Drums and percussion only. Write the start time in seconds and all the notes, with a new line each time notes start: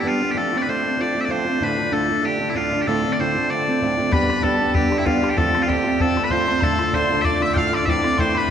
4.12 bodhran
4.30 bodhran
4.44 bodhran
4.75 bodhran
4.92 bodhran
5.06 bodhran
5.24 bodhran
5.38 bodhran
5.55 bodhran
5.69 bodhran
6.00 bodhran
6.17 bodhran
6.30 bodhran
6.48 bodhran
6.62 bodhran
6.79 bodhran
6.93 bodhran
7.25 bodhran
7.42 bodhran
7.56 bodhran
7.73 bodhran
7.87 bodhran
8.04 bodhran
8.18 bodhran
8.35 bodhran